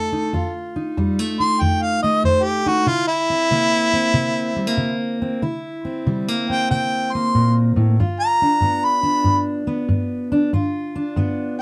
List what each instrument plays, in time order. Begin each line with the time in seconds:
Already playing: steel-string acoustic guitar F2 A3 D#4 F4, harmonica A4
0.12 steel-string acoustic guitar D#4
0.33 steel-string acoustic guitar F2 F4
0.76 steel-string acoustic guitar D#4
0.97 steel-string acoustic guitar F2 G3
1.19 steel-string acoustic guitar A3
1.40 steel-string acoustic guitar D#4, harmonica C6
1.61 steel-string acoustic guitar F2, harmonica G5
1.82 harmonica F5
2.03 steel-string acoustic guitar A3, harmonica D#5
2.24 steel-string acoustic guitar F2, harmonica C5
2.44 harmonica G4
2.66 steel-string acoustic guitar D#4, harmonica F#4
2.86 steel-string acoustic guitar C3 E4, harmonica F4
3.08 harmonica E4
3.30 steel-string acoustic guitar C4
3.51 steel-string acoustic guitar C3 A#3
3.93 steel-string acoustic guitar C4
4.14 steel-string acoustic guitar C3
4.56 steel-string acoustic guitar G3
4.67 steel-string acoustic guitar A#3
4.77 steel-string acoustic guitar C3
5.22 steel-string acoustic guitar C4
5.42 steel-string acoustic guitar C3 E4
5.85 steel-string acoustic guitar C4
6.06 steel-string acoustic guitar C3 G3
6.28 steel-string acoustic guitar A#3
6.50 steel-string acoustic guitar C4, harmonica G5
6.71 steel-string acoustic guitar C3, harmonica G5
7.13 steel-string acoustic guitar A#3, harmonica C6
7.35 steel-string acoustic guitar A#2
7.76 steel-string acoustic guitar A2
8.00 steel-string acoustic guitar G2 F4
8.20 harmonica A#5
8.42 steel-string acoustic guitar D4
8.61 steel-string acoustic guitar G2 B3
8.85 harmonica B5
9.03 steel-string acoustic guitar D4
9.24 steel-string acoustic guitar G2
9.67 steel-string acoustic guitar B3
9.89 steel-string acoustic guitar G2
10.32 steel-string acoustic guitar D4
10.53 steel-string acoustic guitar G2 F4
10.96 steel-string acoustic guitar D4
11.16 steel-string acoustic guitar G2 B3